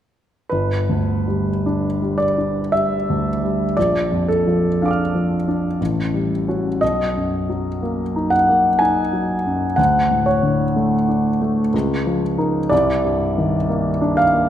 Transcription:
0.49 3.73 G1 soft
0.49 2.18 B4 medium
0.89 1.49 D2 soft
1.28 1.86 G3 soft
1.66 2.23 D4 soft
2.02 2.59 G3 soft
2.18 2.72 D5 medium
2.38 2.94 D4 soft
2.72 3.29 G3 soft
2.72 3.77 E5 medium
3.10 3.64 D2 soft
3.43 3.77 G3 soft
3.77 5.77 A#1 soft
3.77 4.28 D5 medium
4.12 4.66 F2 soft
4.28 6.31 A4 medium
4.47 5.01 F3 soft
4.82 5.35 D4 soft
4.82 5.77 F5 soft
4.88 5.80 D6 soft
4.88 5.82 F6 soft
5.15 5.67 F3 soft
5.48 5.81 D4 soft
5.81 6.79 A1 soft
6.14 6.68 G3 soft
6.48 6.78 C#4 soft
6.48 6.79 F#4 soft
6.81 9.75 B1 soft
6.81 8.30 D#5 medium
7.16 7.69 F#2 soft
7.50 8.01 F#3 soft
7.83 8.34 A#3 soft
8.16 8.68 D#4 soft
8.30 8.80 F#5 medium
8.49 9.01 A#3 soft
8.79 9.33 D#4 soft
8.79 9.78 G#5 medium
9.13 9.65 F#3 soft
9.46 9.79 F#2 soft
9.76 11.69 D2 soft
9.76 10.26 F#5 medium
10.11 10.63 A2 soft
10.26 12.22 C#5 medium
10.43 10.95 D3 soft
10.76 11.28 A3 soft
11.09 11.61 D4 soft
11.42 11.74 A3 soft
11.74 12.69 C#2 soft
12.07 12.59 F3 soft
12.38 12.68 D#4 soft
12.38 12.68 A#4 soft
12.70 14.49 C2 soft
12.70 14.17 D5 medium
13.05 13.56 G2 soft
13.38 13.90 D#3 soft
13.70 14.22 A#3 soft
14.01 14.49 D4 soft
14.17 14.49 F5 medium
14.34 14.49 A#3 soft

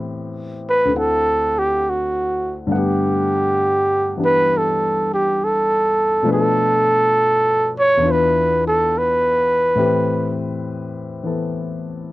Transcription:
0.00 0.89 A2 medium
0.00 0.90 E3 soft
0.00 0.92 B3 soft
0.00 0.89 C4 soft
0.00 0.94 G4 medium
0.70 0.94 B4 medium
0.85 2.66 D2 soft
0.85 2.66 D3 soft
0.90 2.69 C4 soft
0.90 2.71 E4 soft
0.96 1.60 A4 medium
0.96 2.70 F#5 soft
1.59 1.91 G4 medium
1.89 2.59 F#4 medium
2.67 6.23 G2 soft
2.67 6.23 D3 soft
2.67 6.23 A3 soft
2.71 4.16 B3 soft
2.71 6.25 F#5 soft
2.78 4.18 G4 medium
4.17 6.23 E3 soft
4.17 6.24 B3 soft
4.17 6.25 D4 soft
4.17 6.25 G4 soft
4.25 4.59 B4 medium
4.57 5.12 A4 medium
5.14 5.46 G4 medium
5.44 6.32 A4 medium
6.23 8.00 B2 soft
6.23 8.01 F3 soft
6.23 8.01 A3 soft
6.27 8.00 D4 soft
6.27 8.03 B4 medium
6.33 7.72 A4 medium
7.79 8.13 C#5 medium
7.97 9.76 E2 soft
7.97 9.75 E3 soft
8.02 9.78 D4 soft
8.02 9.80 F4 soft
8.08 9.78 B4 medium
8.08 8.66 B4 medium
8.67 8.99 A4 medium
8.98 10.42 B4 medium
9.75 12.12 A2 medium
9.75 11.22 E3 soft
9.75 12.12 C4 medium
9.75 12.12 G4 medium
9.80 12.12 B4 medium
11.23 12.12 E3 soft
11.23 12.12 B3 soft
11.23 12.12 E4 soft
11.23 12.12 A4 soft

